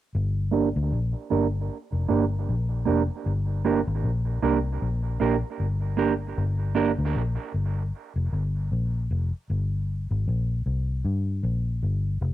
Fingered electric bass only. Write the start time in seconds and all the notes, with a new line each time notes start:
0.15 G1
0.76 D2
0.92 A#1
1.31 G1
1.92 F1
2.10 G1
2.49 A#1
2.87 F1
3.26 G1
3.87 G#1
4.04 A#1
4.43 C2
4.82 A#1
5.21 A#1
5.60 G1
6.38 G1
6.99 D2
7.16 A#1
7.54 G1
8.16 F1
8.33 G1
8.72 A#1
9.11 F1
9.50 G1
10.11 G#1
10.27 A#1
10.66 C2
11.05 G2
11.43 A#1
11.83 G1
12.21 F1